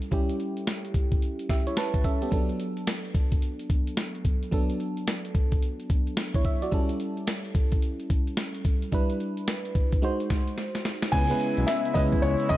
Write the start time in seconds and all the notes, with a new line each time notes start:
0.02 closed hi-hat
0.11 G3 C#4 E4 G4, kick, closed hi-hat
0.29 closed hi-hat
0.40 closed hi-hat
0.57 closed hi-hat
0.67 snare, closed hi-hat
0.85 closed hi-hat
0.94 kick, closed hi-hat
1.12 kick, closed hi-hat
1.22 closed hi-hat
1.39 closed hi-hat
1.49 G4 E5, kick, snare, closed hi-hat
1.67 E4 C#5, closed hi-hat
1.77 B4 A5, snare, closed hi-hat
1.94 kick, closed hi-hat
2.04 C#4 A4 E5, kick, closed hi-hat
2.22 B3 G4, closed hi-hat
2.31 F#3 B3 D4 A4, kick, closed hi-hat
2.49 closed hi-hat
2.60 closed hi-hat
2.77 closed hi-hat
2.87 snare, closed hi-hat
3.05 closed hi-hat
3.15 kick, closed hi-hat
3.32 kick, closed hi-hat
3.42 closed hi-hat
3.59 closed hi-hat
3.70 kick, closed hi-hat
3.87 closed hi-hat
3.97 snare, closed hi-hat
4.15 closed hi-hat
4.25 kick, closed hi-hat
4.43 closed hi-hat
4.51 F#3 B3 D4 A4, kick, closed hi-hat
4.70 closed hi-hat
4.80 closed hi-hat
4.97 closed hi-hat
5.07 snare, closed hi-hat
5.25 closed hi-hat
5.35 kick, closed hi-hat
5.52 kick, closed hi-hat
5.62 closed hi-hat
5.80 closed hi-hat
5.90 kick, closed hi-hat
6.07 closed hi-hat
6.17 snare, closed hi-hat
6.34 E4 C#5, kick, closed hi-hat
6.45 E5, kick, closed hi-hat
6.62 F#4 D5, closed hi-hat
6.71 G3 C#4 E4 A4, kick, closed hi-hat
6.89 closed hi-hat
7.00 closed hi-hat
7.17 closed hi-hat
7.27 snare, closed hi-hat
7.45 closed hi-hat
7.55 kick, closed hi-hat
7.72 kick, closed hi-hat
7.82 closed hi-hat
8.00 closed hi-hat
8.10 kick, closed hi-hat
8.27 closed hi-hat
8.37 snare, closed hi-hat
8.55 closed hi-hat
8.65 kick, closed hi-hat
8.82 closed hi-hat
8.92 G3 D4 E4 B4, kick, closed hi-hat
9.10 closed hi-hat
9.20 closed hi-hat
9.37 closed hi-hat
9.47 snare, closed hi-hat
9.65 closed hi-hat
9.75 kick, closed hi-hat
9.92 kick, closed hi-hat
10.02 G#3 D#4 F#4 C5, closed hi-hat
10.20 closed hi-hat
10.30 kick, snare, closed hi-hat
10.48 closed hi-hat
10.58 snare, closed hi-hat
10.75 snare, closed hi-hat
10.85 snare, closed hi-hat
11.02 snare, closed hi-hat
11.12 C#2 C#3 G#3 B3 C#4 E4 B4 G#5, kick, closed hi-hat, crash
11.30 G#3 B3 C#4 E4 B4, closed hi-hat
11.40 closed hi-hat, tambourine
11.57 B1, closed hi-hat
11.67 E5, snare, closed hi-hat, tambourine
11.85 closed hi-hat
11.94 C#2 G#3 B3 C#4 E4 B4 D#5, kick, open hi-hat, tambourine
12.12 kick, closed hi-hat
12.22 C#2 C#5, closed hi-hat, tambourine
12.40 closed hi-hat
12.49 C#3 D#5, kick, closed hi-hat, tambourine